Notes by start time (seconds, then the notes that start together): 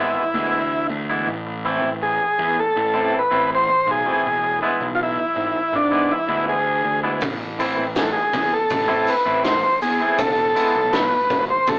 Already playing: G#1 A1 G#3 B3 E4
0.00 E3
0.34 D2 E3 G#3 B3 E4
0.71 muted clean electric guitar stroke
0.89 D2
1.09 E3 G#3 B3 E4
1.27 A1
1.46 muted clean electric guitar stroke
1.65 E3 A3 C4 E4
1.82 A1
2.02 G#4, muted clean electric guitar stroke
2.39 E2
2.60 A4
2.75 A1, muted clean electric guitar stroke
2.94 E3 A3 C4 E4
3.19 B4
3.31 A1 E3 A3 C4 E4
3.55 C5
3.69 muted clean electric guitar stroke
3.87 B1
3.91 G#4
4.06 E3 A3 C4 E4
4.25 E1
4.44 muted clean electric guitar stroke
4.62 E3 G#3 B3 E4
4.80 B1
4.95 F4
5.00 E4, muted clean electric guitar stroke
5.35 G#1
5.73 G#1 D4, muted clean electric guitar stroke
5.91 E3 G#3 B3 E4
6.12 E4
6.28 D2 E3 G#3 B3 E4
6.49 G#4
6.66 muted clean electric guitar stroke
6.85 D2
7.03 E3 G#3 B3 E4
7.21 A1, kick, open hi-hat, maracas
7.41 muted clean electric guitar stroke
7.59 E3 A3 C4 E4, open hi-hat, maracas
7.77 A1
7.96 G#4, muted clean electric guitar stroke, snare, open hi-hat, maracas
8.04 A4
8.13 G#4
8.33 E2, kick, open hi-hat, maracas
8.53 A4
8.70 A1, muted clean electric guitar stroke, kick, open hi-hat, maracas
8.88 E3 A3 C4 E4
9.07 B4, open hi-hat, maracas
9.25 A1 E3 A3 C4 E4
9.44 C5, snare, open hi-hat, maracas
9.63 muted clean electric guitar stroke
9.81 E2 G#4, open hi-hat, maracas
10.00 E3 A3 C4 E4
10.18 E1 A4, kick, open hi-hat, maracas
10.38 muted clean electric guitar stroke
10.55 E3 G#3 B3 E4, open hi-hat, maracas
10.75 B1
10.93 B4, muted clean electric guitar stroke, snare, open hi-hat, maracas
11.30 G#1, kick, open hi-hat, maracas
11.50 C5
11.67 G#1 A4, muted clean electric guitar stroke, kick, open hi-hat, maracas